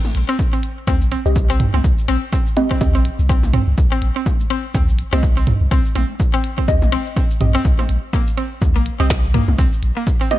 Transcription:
0.05 high tom, shaker
0.15 sub bass A#1, closed hi-hat
0.29 synth arpeggio sound C4
0.39 kick, shaker
0.53 synth arpeggio sound C4, shaker
0.63 closed hi-hat
0.87 sub bass D#2, synth arpeggio sound C4, kick, high tom, shaker
1.01 sub bass A#1, shaker
1.12 synth arpeggio sound C4, closed hi-hat
1.26 sub bass C2, synth stab C4 G4 D#5, shaker
1.36 kick, shaker
1.50 synth arpeggio sound C4, shaker
1.60 closed hi-hat, mid tom
1.74 sub bass C2, synth arpeggio sound C4, high tom
1.84 sub bass C2, kick, shaker
1.98 shaker
2.08 sub bass A#1, synth arpeggio sound C4, closed hi-hat
2.32 synth arpeggio sound C4, kick, shaker
2.47 shaker
2.57 synth stab C4 G4 D#5, closed hi-hat, high tom
2.71 synth arpeggio sound C4, kick
2.81 sub bass D#2, synth stab C4 G4 D#5, kick, shaker
2.95 sub bass A#1, synth arpeggio sound C4, shaker
3.05 closed hi-hat
3.19 sub bass C2, shaker
3.29 synth arpeggio sound C4, kick, shaker
3.43 high tom, shaker
3.53 synth arpeggio sound C4, closed hi-hat, mid tom
3.67 sub bass C2
3.78 sub bass C2, kick, shaker
3.92 synth arpeggio sound C4, shaker
4.02 sub bass A#1, closed hi-hat
4.16 synth arpeggio sound C4
4.26 kick, high tom, shaker
4.40 shaker
4.50 synth arpeggio sound C4, closed hi-hat
4.74 sub bass D#2, synth arpeggio sound C4, kick, shaker
4.88 sub bass A#1, shaker
4.99 closed hi-hat
5.13 sub bass C2, synth arpeggio sound C4, synth stab C4 G4 D#5, high tom, shaker
5.23 kick, shaker
5.37 synth arpeggio sound C4, shaker
5.47 closed hi-hat, mid tom
5.61 sub bass C2
5.71 sub bass C2, synth arpeggio sound C4, kick, shaker
5.85 shaker
5.95 sub bass A#1, synth arpeggio sound C4, closed hi-hat, high tom
6.20 kick, shaker
6.34 synth arpeggio sound C4, shaker
6.44 closed hi-hat
6.58 synth arpeggio sound C4, kick
6.68 sub bass D#2, synth stab C4 G4 D#5, kick, shaker
6.82 sub bass A#1, high tom, shaker
6.92 synth arpeggio sound C4, closed hi-hat
7.06 shaker
7.16 synth arpeggio sound C4, kick, shaker
7.31 shaker
7.41 sub bass A#1, synth stab C4 G4 D#5, closed hi-hat, mid tom
7.55 synth arpeggio sound C4, shaker
7.65 sub bass C2, kick, shaker
7.79 synth arpeggio sound C4, high tom, shaker
7.89 sub bass A#1, closed hi-hat
8.13 synth arpeggio sound A#3, kick, shaker
8.27 shaker
8.37 synth arpeggio sound C4, closed hi-hat
8.62 sub bass D#2, kick, high tom, shaker
8.76 sub bass A#1, synth arpeggio sound A#3, shaker
8.86 closed hi-hat
9.00 sub bass C2, synth arpeggio sound C4, synth stab C4 G4 D#5, shaker
9.10 kick, snare, shaker
9.24 shaker
9.34 synth arpeggio sound A#3, closed hi-hat, mid tom
9.48 sub bass C2, high tom
9.58 sub bass C2, synth arpeggio sound C4, kick, shaker
9.72 shaker
9.83 sub bass A#1, closed hi-hat
9.97 synth arpeggio sound A#3
10.07 kick, shaker
10.21 synth arpeggio sound C4, shaker
10.31 synth stab C4 G4 D#5, closed hi-hat, high tom

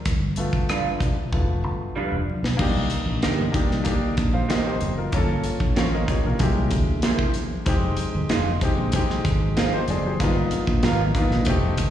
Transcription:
0.05 fingered electric bass G1, kick, closed hi-hat, muted conga
0.36 grand piano A3 B3 F4, closed hi-hat, muted conga
0.53 kick
0.69 clean electric guitar G3 D4 F4 B4, cross-stick, closed hi-hat, high conga
1.00 fingered electric bass F1, kick, closed hi-hat, low conga
1.32 fingered electric bass F1, grand piano A3 B3 F4, kick, muted conga
1.64 fingered electric bass G1
1.96 clean electric guitar G3 D4 F4 B4, muted fingered electric bass stroke, high conga
2.12 fingered electric bass F1
2.30 high conga
2.43 fingered electric bass B1, snare
2.57 fingered electric bass C2, grand piano A#3 D4 D#4 G4, kick, crash
2.90 closed hi-hat, muted conga
3.06 fingered electric bass A#1
3.22 fingered electric bass G1, clean electric guitar A#3 D#4 G4 C5, snare, closed hi-hat, high conga
3.52 grand piano A#3 D4 D#4 G4, kick, closed hi-hat
3.70 fingered electric bass C2, snare
3.84 grand piano A#3 D4 D#4 G4, kick, closed hi-hat, muted conga
4.17 fingered electric bass A#1, kick, closed hi-hat
4.33 grand piano C5 F5
4.49 clean electric guitar A#3 D#4 G4 C5, grand piano A#4 D#5, snare, closed hi-hat, high conga
4.66 grand piano G4 C5
4.81 fingered electric bass F#1, closed hi-hat, high conga
4.98 grand piano F4 A#4
5.12 fingered electric bass G1, grand piano A#3 C#4 F4 A4, kick, closed hi-hat, muted conga
5.44 closed hi-hat, muted conga
5.60 fingered electric bass A#1, kick
5.76 fingered electric bass A1, clean electric guitar C#4 F4 A#4 C#5, grand piano C5 F5, snare, closed hi-hat, high conga
5.93 grand piano A#4 D#5
6.08 grand piano G4 C#5, kick, closed hi-hat, low conga
6.23 fingered electric bass A#1, grand piano F4 A#4, low conga
6.39 fingered electric bass C2, grand piano G#3 A#3 E4, kick, closed hi-hat, muted conga
6.43 grand piano G4
6.71 fingered electric bass D2, kick, closed hi-hat
7.02 clean electric guitar A#3 E4 G#4 C5, snare, closed hi-hat, high conga
7.19 kick
7.34 closed hi-hat, high conga
7.65 fingered electric bass F1, grand piano G#3 C4 D#4 G4, kick, closed hi-hat
7.97 closed hi-hat, muted conga
8.15 fingered electric bass G1
8.29 fingered electric bass F1, clean electric guitar G#3 D#4 F4 C5, snare, closed hi-hat, high conga
8.61 grand piano G#3 C4 D#4 G4, kick, closed hi-hat
8.78 fingered electric bass A#1
8.92 grand piano G#3 C4 D#4 G4, kick, closed hi-hat, muted conga
9.10 snare
9.25 fingered electric bass G#1, kick, closed hi-hat
9.57 clean electric guitar G#3 D#4 F4 C5, grand piano F4 A#4, snare, closed hi-hat, high conga
9.74 grand piano G4 C5
9.88 fingered electric bass F#1, grand piano G#4 D5, closed hi-hat, high conga
10.06 grand piano G4 C5
10.20 fingered electric bass G1, grand piano A#3 B3 D#4 F4, kick, closed hi-hat
10.51 closed hi-hat, muted conga
10.67 fingered electric bass A#1, kick
10.83 fingered electric bass G#1, clean electric guitar G3 B3 F4 A#4, snare, closed hi-hat, high conga
11.15 grand piano A#3 B3 D#4 F4, kick, closed hi-hat, low conga
11.31 fingered electric bass A#1, snare, low conga
11.45 fingered electric bass F1, grand piano A3 C4 D#4, kick, closed hi-hat, muted conga
11.49 grand piano G4
11.78 fingered electric bass G1, kick, closed hi-hat

